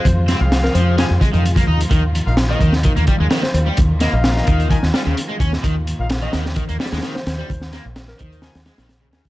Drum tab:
HH |x---x---x---x---x---x-x-x-x---x-|x---x---x---x---x-x-x---x---x---|x---x---x---x-x-x---x---x---x---|x---x---x---x---x-x-xxxxx---x---|
SD |----o---o-o-----o---------------|--------o-----o---------o-o-----|----o---o-o-------o-o---------o-|--------o---o-o-----ooooo-o-o---|
BD |o-------------------o-----o-----|o-----------o---o---o-----------|o-----------o---o-----------o---|o---------------o---------------|

HH |x---x---x---x-x-x-x-x-x-x---x-x-|
SD |--o-o---o-o-----o-o-o-o-o---o---|
BD |o-----------o-----------------o-|